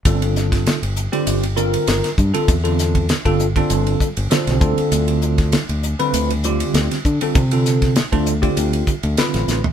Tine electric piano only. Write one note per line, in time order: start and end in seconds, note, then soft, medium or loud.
0.05 0.78 D3 medium
0.05 0.78 G3 medium
0.05 0.78 C4 medium
0.05 0.78 F4 medium
0.05 0.78 A4 medium
1.12 1.43 D3 medium
1.12 1.43 G3 medium
1.12 1.43 C4 medium
1.12 1.43 F4 medium
1.12 1.43 G4 medium
1.56 2.09 D3 medium
1.56 2.09 G3 medium
1.56 2.09 C4 medium
1.56 2.09 F4 medium
1.56 2.09 A#4 medium
2.34 2.54 D3 medium
2.34 2.54 G3 medium
2.34 2.54 C4 medium
2.34 2.54 F4 medium
2.34 2.54 A4 medium
2.64 3.05 D3 medium
2.64 3.05 G3 medium
2.64 3.05 C4 medium
2.64 3.05 F4 medium
2.64 3.05 A4 medium
3.25 3.45 D3 medium
3.25 3.45 G3 medium
3.25 3.45 C4 medium
3.25 3.45 F4 medium
3.25 3.45 A4 loud
3.56 4.07 D3 medium
3.56 4.07 G3 medium
3.56 4.07 C4 medium
3.56 4.07 F4 medium
3.56 4.07 A4 loud
4.30 4.60 D3 medium
4.30 4.60 G3 medium
4.30 4.60 C4 medium
4.30 4.59 F4 medium
4.30 4.60 A4 medium
4.30 4.88 C5 medium
4.61 5.59 D3 medium
4.61 5.59 G3 medium
4.61 5.59 C4 medium
4.61 5.59 F4 medium
4.61 5.59 A4 medium
5.99 6.30 D3 medium
5.99 6.31 G3 medium
5.99 6.30 C4 medium
5.99 6.30 F4 medium
5.99 6.30 B4 loud
6.45 6.96 D3 medium
6.45 6.96 G3 medium
6.45 6.97 C4 medium
6.45 6.96 F4 medium
6.45 6.97 G4 medium
7.22 7.41 D3 medium
7.22 7.42 G3 medium
7.22 7.41 C4 medium
7.22 7.42 F4 medium
7.22 7.42 A4 medium
7.52 7.93 D3 medium
7.52 7.92 G3 medium
7.52 7.92 C4 medium
7.52 7.92 F4 medium
7.52 7.93 A4 medium
8.12 8.32 D3 medium
8.12 8.33 G3 medium
8.12 8.32 C4 medium
8.12 8.33 F4 medium
8.12 8.32 A4 loud
8.42 8.93 D3 medium
8.42 8.93 G3 medium
8.42 8.93 C4 medium
8.42 8.93 F4 medium
8.42 8.93 G4 medium
9.18 9.60 D3 medium
9.18 9.60 G3 medium
9.18 9.60 C4 medium
9.18 9.60 F4 medium
9.18 9.60 B4 medium